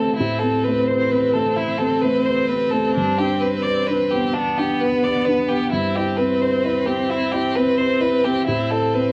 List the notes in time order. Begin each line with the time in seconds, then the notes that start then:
Already playing: A2 A3 C4 A4 B4
0.16 A2 C4 E4
0.39 A4
0.43 C4
0.63 B4
0.68 A3
0.87 B4 C5
1.11 C4 B4
1.33 A3 A4
1.56 E4
1.78 C4 A4
2.02 A3 B4
2.26 B4 C5
2.48 C4 B4
2.71 A3 A4
2.95 G2 D4
3.19 D4 G4
3.40 B4
3.62 D5
3.67 B4
3.87 D4 B4
4.11 B3 G4
4.34 B3 D4
4.58 D4 G4
4.80 B3 B4
5.03 B4 D5
5.25 D4 B4
5.48 B3 G4
5.73 G2 C4 E4
5.96 E4 G4
6.17 C4 B4
6.41 B4 C5
6.65 E4 B4
6.86 C4 G4
7.10 E4
7.31 E4 G4
7.55 C4 B4
7.78 B4 C5
8.00 E4 B4
8.25 C4 G4
8.47 A2 E4
8.51 C4
8.71 E4 A4
8.94 C4 B4